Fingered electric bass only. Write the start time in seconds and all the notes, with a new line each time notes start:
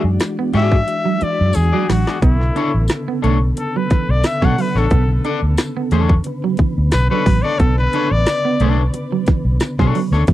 0.04 F#2
0.54 G#2
1.22 muted fingered electric bass stroke
1.41 F#2
1.57 E2
1.90 A1
2.22 B1
2.74 A1
3.24 B1
3.91 muted fingered electric bass stroke
4.09 B1
4.42 B2
4.75 A1
4.91 B1
5.43 D2
5.92 E2
6.59 muted fingered electric bass stroke
6.78 D2
6.94 B1
7.26 A1
7.59 B1
8.11 A1
8.60 B1
9.28 muted fingered electric bass stroke
9.45 B1
9.79 B2
10.12 D2
10.28 E2